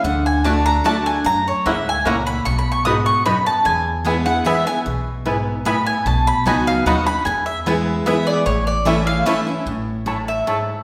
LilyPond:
<<
  \new Staff \with { instrumentName = "Mandolin" } { \time 3/4 \key a \major \tempo 4 = 150 fis''8 gis''8 a''8 bes''8 a''8 gis''8 | ais''8 cis''8 e''8 gis''8 ais''8 b''8 | \tuplet 3/2 { cis'''8 b''8 cis'''8 } dis'''8 cis'''8 b''8 a''8 | gis''4. fis''8 e''8 gis''8 |
r2 b''8 gis''8 | a''8 b''8 gis''8 f''8 fis''8 b''8 | gis''8 e''8 r4 e''8 d''8 | cis''8 d''8 e''8 f''8 e''8 r8 |
r4. e''4. | }
  \new Staff \with { instrumentName = "Mandolin" } { \time 3/4 \key a \major r4 <a fis' d'' a''>8 r8 <a fis' d'' a''>8 r8 | r4 <ais e' cis'' fis''>8 r8 <ais e' cis'' fis''>8 r8 | r4 <b fis' dis'' b''>8 r8 <b fis' dis'' b''>8 r8 | r4 <b e' b' gis''>8 r8 <b e' b' gis''>8 r8 |
r4 <b e' b' gis''>8 r8 <b e' b' gis''>8 r8 | r4 <b fis' dis'' b''>8 r8 <b fis' dis'' b''>8 r8 | r4 <b e' b' gis''>8 r8 <b e' b' gis''>8 r8 | r4 <a e' cis'' a''>8 r8 <a e' cis'' a''>8 r8 |
r4 <a e' cis'' a''>8 r8 <a e' cis'' a''>8 r8 | }
  \new Staff \with { instrumentName = "Five-string banjo" } { \time 3/4 \key a \major r4 <a d' fis'>8 r8 <a d' fis'>8 r8 | r4 <ais cis' e'>8 r8 <ais cis' e'>8 r8 | r4 <b dis' fis'>8 r8 <b dis' fis'>8 r8 | r4 <b e'>8 r8 <b e'>8 r8 |
r4 <b e'>8 r8 <b e'>8 r8 | r4 <b dis' fis'>8 r8 <b dis' fis'>8 r8 | r4 <b e'>8 r8 <b e'>8 r8 | r4 <a cis' e'>8 r8 <a cis' e'>8 r8 |
r2. | }
  \new Staff \with { instrumentName = "Steel-string acoustic guitar" } { \time 3/4 \key a \major << { r4 <d a d' fis'>4 <d a d' fis'>4 | r2. | r2. | r4 <e gis b e'>8 <b e'>8 <e gis b e'>8 <b e'>8 |
r2. | r4 <fis b dis' fis'>4 <fis b dis' fis'>8 <dis' fis'>8 | r4 <e gis b e'>4 <e gis b e'>4 | r4 <e a cis' e'>4 <e a cis' e'>8 <cis' e'>8 |
r2. | } \\ { d2 r4 | fis,4 gis,4 ais,4 | b,4 gis,4 fis,4 | e,2 r4 |
b,4 gis,4 a,4 | b,2 r4 | e,2 r4 | a,2 r4 |
a,4 a,4 gis,4 | } >> }
  \new Staff \with { instrumentName = "Upright bass" } { \clef bass \time 3/4 \key a \major d,2. | fis,4 d,4 cis,4 | b,,2. | e,2. |
b,,2. | b,,4 cis,4 dis,4 | e,2. | a,,2. |
a,,2. | }
>>